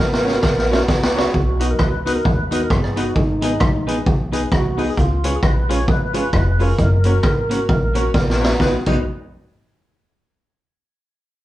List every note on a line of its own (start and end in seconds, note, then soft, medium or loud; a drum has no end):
0.00 0.37 G#1 medium
0.00 0.83 A#4 loud
0.13 snare medium
0.25 0.33 C#4 medium
0.25 0.37 C#4 medium
0.25 0.34 F#4 medium
0.25 0.37 F#4 medium
0.25 0.34 A#4 medium
0.25 0.37 A#4 medium
0.25 0.34 C#5 medium
0.25 0.37 C#5 medium
0.25 snare medium
0.42 0.82 A#1 medium
0.42 kick loud
0.42 snare medium
0.58 snare medium
0.70 0.79 C#4 medium
0.70 0.82 C#4 medium
0.70 0.82 F#4 medium
0.70 0.79 F#4 medium
0.70 0.79 A#4 medium
0.70 0.83 A#4 medium
0.70 0.79 C#5 loud
0.70 0.83 C#5 loud
0.70 snare medium
0.88 1.27 C#2 medium
0.88 1.26 F#4 medium
0.88 kick loud
0.88 snare medium
1.03 snare loud
1.15 1.27 C#4 medium
1.15 1.24 C#4 medium
1.15 1.27 F#4 medium
1.15 1.24 F#4 medium
1.15 1.28 A#4 medium
1.15 1.25 A#4 medium
1.15 1.28 C#5 loud
1.15 1.25 C#5 medium
1.15 snare medium
1.24 1.34 G#4 medium
1.34 1.73 B1 loud
1.34 1.68 F#4 loud
1.34 kick loud
1.60 1.69 B3 medium
1.60 1.72 D#4 medium
1.60 1.69 D#4 medium
1.60 1.72 F#4 medium
1.60 1.69 F#4 medium
1.60 1.73 B4 medium
1.60 1.70 B4 medium
1.60 1.73 D#5 medium
1.60 closed hi-hat medium
1.71 1.79 A#4 medium
1.79 2.18 C#2 medium
1.79 2.13 B4 loud
1.79 kick loud
1.79 cross-stick loud
2.06 2.15 B3 medium
2.06 2.18 D#4 medium
2.06 2.15 D#4 medium
2.06 2.18 F#4 medium
2.06 2.15 F#4 loud
2.06 2.18 B4 medium
2.06 2.15 B4 loud
2.06 2.19 D#5 loud
2.06 closed hi-hat medium
2.15 2.25 A#4 loud
2.24 2.64 D#2 loud
2.24 2.62 B4 loud
2.24 muted clean electric guitar stroke soft
2.24 kick loud
2.51 2.60 B3 medium
2.51 2.63 D#4 medium
2.51 2.60 D#4 loud
2.51 2.64 F#4 medium
2.51 2.61 F#4 loud
2.51 2.64 B4 medium
2.51 2.61 B4 loud
2.51 2.64 D#5 loud
2.51 closed hi-hat medium
2.61 2.71 A#4 loud
2.70 3.09 G1 medium
2.70 3.04 G#4 medium
2.70 2.76 B4 soft
2.70 2.76 D#5 soft
2.70 kick loud
2.70 cross-stick loud
2.84 cross-stick medium
2.96 3.05 B3 medium
2.96 3.09 D#4 medium
2.96 3.06 D#4 loud
2.96 3.06 F#4 loud
2.96 3.09 F#4 medium
2.96 3.06 B4 loud
2.96 3.09 B4 medium
2.96 3.09 D#5 loud
2.96 closed hi-hat medium
3.05 3.14 F#4 medium
3.15 3.54 G#1 loud
3.15 4.02 D#4 medium
3.15 kick loud
3.41 3.50 B3 medium
3.41 3.51 D#4 medium
3.41 3.54 D#4 medium
3.41 3.51 G#4 medium
3.41 3.54 G#4 medium
3.41 3.51 B4 loud
3.41 3.55 B4 medium
3.41 3.55 D#5 loud
3.41 closed hi-hat medium
3.60 3.99 A#1 medium
3.60 kick loud
3.60 cross-stick loud
3.87 3.96 B3 medium
3.87 3.96 D#4 loud
3.87 4.00 D#4 medium
3.87 3.96 G#4 loud
3.87 4.00 G#4 medium
3.87 3.96 B4 loud
3.87 4.00 B4 medium
3.87 4.00 D#5 medium
3.87 closed hi-hat medium
4.06 4.45 B1 medium
4.06 muted clean electric guitar stroke soft
4.06 kick loud
4.32 4.41 B3 medium
4.32 4.41 D#4 loud
4.32 4.45 D#4 medium
4.32 4.45 G#4 medium
4.32 4.42 G#4 medium
4.32 4.42 B4 medium
4.32 4.45 B4 medium
4.32 4.45 D#5 loud
4.32 closed hi-hat medium
4.52 4.90 C2 loud
4.52 4.85 F#4 loud
4.52 4.57 B4 soft
4.52 4.57 D#5 soft
4.52 kick loud
4.52 cross-stick loud
4.77 4.87 B3 medium
4.77 4.87 D#4 medium
4.77 4.90 D#4 medium
4.77 4.90 G#4 medium
4.77 4.87 G#4 loud
4.77 4.87 B4 loud
4.77 4.91 B4 medium
4.77 4.91 D#5 loud
4.77 open hi-hat soft
4.90 4.98 G#4 medium
4.97 5.36 C#2 loud
4.97 5.31 F4 loud
4.97 kick loud
4.97 hi-hat pedal medium
5.24 5.32 G#3 medium
5.24 5.33 C#4 medium
5.24 5.36 F4 loud
5.24 5.33 F4 medium
5.24 5.36 G#4 medium
5.24 5.36 B4 medium
5.24 5.33 B4 medium
5.24 5.37 C#5 loud
5.24 closed hi-hat medium
5.36 5.43 G#4 medium
5.43 5.88 A#1 medium
5.43 5.71 B4 loud
5.43 kick loud
5.43 cross-stick loud
5.69 5.78 G#3 loud
5.69 5.78 C#4 loud
5.69 5.81 F4 medium
5.69 5.78 F4 loud
5.69 5.81 G#4 medium
5.69 5.82 B4 medium
5.69 5.78 B4 loud
5.69 5.87 C#5 loud
5.69 5.82 C#5 loud
5.69 closed hi-hat medium
5.88 6.27 G#1 loud
5.88 6.63 B4 loud
5.88 muted clean electric guitar stroke soft
5.88 kick loud
6.13 6.23 G#3 loud
6.13 6.23 C#4 medium
6.13 6.26 F4 medium
6.13 6.24 F4 loud
6.13 6.26 G#4 medium
6.13 6.27 B4 medium
6.13 6.24 B4 loud
6.13 6.27 C#5 loud
6.13 closed hi-hat medium
6.33 6.72 F1 loud
6.33 6.39 B4 soft
6.33 6.39 C#5 soft
6.33 kick loud
6.33 cross-stick loud
6.59 6.68 G#3 medium
6.59 6.68 C#4 medium
6.59 6.69 F4 medium
6.59 6.72 F4 medium
6.59 6.72 G#4 medium
6.59 8.37 A#4 medium
6.59 6.69 B4 medium
6.59 6.73 B4 medium
6.59 6.73 C#5 loud
6.59 open hi-hat soft
6.78 7.17 F#1 loud
6.78 kick loud
6.78 hi-hat pedal medium
7.04 7.14 A#3 medium
7.04 7.14 C#4 medium
7.04 7.17 C#4 medium
7.04 7.14 F#4 medium
7.04 7.18 F#4 medium
7.04 7.14 A#4 loud
7.04 7.18 A#4 medium
7.04 7.18 C#5 loud
7.04 closed hi-hat medium
7.23 7.62 G#1 medium
7.23 kick loud
7.23 cross-stick loud
7.49 7.59 A#3 loud
7.49 7.59 C#4 medium
7.49 7.63 C#4 medium
7.49 7.59 F#4 loud
7.49 7.63 F#4 medium
7.49 7.59 A#4 medium
7.49 7.63 A#4 medium
7.49 7.63 C#5 medium
7.49 closed hi-hat medium
7.69 8.08 A#1 medium
7.69 muted clean electric guitar stroke soft
7.69 kick loud
7.94 8.04 A#3 medium
7.94 8.04 C#4 medium
7.94 8.08 C#4 medium
7.94 8.04 F#4 loud
7.94 8.08 F#4 medium
7.94 8.04 A#4 medium
7.94 8.08 A#4 medium
7.94 8.08 C#5 loud
7.94 closed hi-hat medium
8.14 8.53 A#1 loud
8.14 8.20 A#4 soft
8.14 8.20 C#5 soft
8.14 kick loud
8.14 snare medium
8.30 snare medium
8.40 8.50 A#3 medium
8.40 8.53 C#4 medium
8.40 8.50 C#4 medium
8.40 8.53 F#4 medium
8.40 8.50 F#4 medium
8.40 8.53 A#4 medium
8.40 8.50 A#4 medium
8.40 8.54 C#5 loud
8.44 snare loud
8.59 8.75 B1 loud
8.59 8.76 B3 medium
8.59 8.76 D#4 medium
8.59 8.75 D#4 medium
8.59 8.76 F#4 medium
8.59 8.75 F#4 medium
8.59 8.76 B4 medium
8.59 8.75 B4 medium
8.59 8.76 D#5 medium
8.59 kick medium
8.59 snare medium
8.86 9.04 B1 medium
8.86 8.98 B3 medium
8.86 9.01 D#4 medium
8.86 8.98 D#4 medium
8.86 9.01 F#4 medium
8.86 8.98 F#4 medium
8.86 9.01 B4 medium
8.86 9.04 B4 medium
8.86 8.99 B4 medium
8.86 9.01 D#5 medium
8.86 kick medium
8.86 crash medium